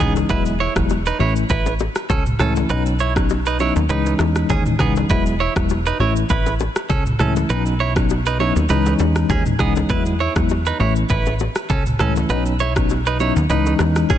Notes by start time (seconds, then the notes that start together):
0.00 C#2 E3 G#3 B3 C#4 D#4 G#4, kick, mid tom, shaker
0.16 low bongo, shaker
0.29 E1 F#3 G#3 B3 E4 B4, kick, low conga, shaker
0.46 shaker
0.60 E4 C#5
0.76 E1 F#3 G#3 B3 E4, kick, cross-stick, shaker
0.90 high bongo, shaker
1.06 D#4 B4, shaker
1.19 A1 E3 A3 C#4 E4 C#5, high bongo
1.36 shaker
1.49 A1 E4 B4, kick, low conga, shaker
1.66 low bongo, shaker
1.79 high bongo, low bongo, shaker
1.96 cross-stick, shaker
2.10 C#2 C#4 A4, kick, high bongo, low conga, shaker
2.26 mid tom, shaker
2.39 C#2 E3 A3 C#4 E4 A4, cross-stick, mid tom, shaker
2.56 low bongo, shaker
2.69 B1 F#3 B3 C#4 D#4 B4, low conga, shaker
2.86 shaker
2.99 E4 C#5, shaker
3.16 F#3 B3 C#4 D#4, kick, cross-stick, shaker
3.30 high bongo, shaker
3.46 D#4 B4, shaker
3.59 F#3 B3 C#4 D#4 E4 C#5, high bongo, shaker
3.76 D#2, shaker
3.89 C#2 E3 G#3 C#4 D#4 B4, low conga, shaker
4.06 low bongo, shaker
4.19 E2, cross-stick, high bongo, low bongo, shaker
4.36 cross-stick, shaker
4.50 D#2 C#4 G#4, kick, high bongo, low conga, shaker
4.66 mid tom, shaker
4.79 C#2 E3 G#3 B3 C#4 D#4 G#4, kick, cross-stick, mid tom, shaker
4.96 low bongo, shaker
5.10 E1 F#3 G#3 B3 E4 B4, kick, low conga, shaker
5.26 shaker
5.40 E4 C#5
5.56 E1 F#3 G#3 B3 E4, kick, cross-stick, shaker
5.69 high bongo, shaker
5.86 D#4 B4, shaker
5.99 A1 E3 A3 C#4 E4 C#5, high bongo
6.16 shaker
6.30 A1 E4 B4, kick, low conga, shaker
6.46 low bongo, shaker
6.59 high bongo, low bongo, shaker
6.76 cross-stick, shaker
6.89 C#2 C#4 A4, kick, high bongo, low conga, shaker
7.06 mid tom, shaker
7.19 C#2 E3 A3 C#4 E4 A4, cross-stick, mid tom, shaker
7.36 low bongo, shaker
7.49 B1 F#3 B3 C#4 D#4 B4, low conga, shaker
7.66 shaker
7.80 E4 C#5
7.96 F#3 B3 C#4 D#4, kick, cross-stick, shaker
8.10 high bongo, shaker
8.26 D#4 B4, shaker
8.40 F#3 B3 C#4 D#4 E4 C#5, high bongo
8.56 D#2, shaker
8.69 C#2 E3 G#3 C#4 D#4 B4, low conga, shaker
8.86 low bongo, shaker
8.99 E2, high bongo, low bongo, shaker
9.16 cross-stick, shaker
9.30 D#2 C#4 G#4, kick, high bongo, low conga, shaker
9.46 mid tom, shaker
9.59 C#2 E3 G#3 B3 C#4 D#4 G#4, kick, cross-stick, mid tom, shaker
9.76 low bongo, shaker
9.89 E2 F#3 G#3 B3 E4 B4, kick, low conga, shaker
10.06 shaker
10.20 E4 C#5
10.36 E2 F#3 G#3 B3 E4, kick, cross-stick, shaker
10.49 high bongo, shaker
10.66 D#4 B4, shaker
10.79 A1 E3 A3 C#4 E4 C#5, high bongo
10.96 shaker
11.09 A1 E4 B4, kick, low conga, shaker
11.26 low bongo, shaker
11.39 high bongo, low bongo, shaker
11.56 cross-stick, shaker
11.70 C#2 C#4 A4, kick, high bongo, low conga, shaker
11.86 mid tom, shaker
11.99 C#2 E3 A3 C#4 E4 A4, cross-stick, mid tom, shaker
12.16 low bongo, shaker
12.29 B1 F#3 B3 C#4 D#4 B4, low conga, shaker
12.46 shaker
12.59 E4 C#5, low bongo, shaker
12.76 F#3 B3 C#4 D#4, kick, cross-stick, shaker
12.90 high bongo, shaker
13.06 D#4 B4, shaker
13.20 F#3 B3 C#4 D#4 E4 C#5, high bongo, shaker
13.36 D#2, shaker
13.49 C#2 E3 G#3 C#4 D#4 B4, low conga, shaker
13.66 low bongo, shaker
13.79 E2, cross-stick, high bongo, low bongo, shaker
13.96 cross-stick, shaker
14.10 C#4 G#4, kick, high bongo, low conga, shaker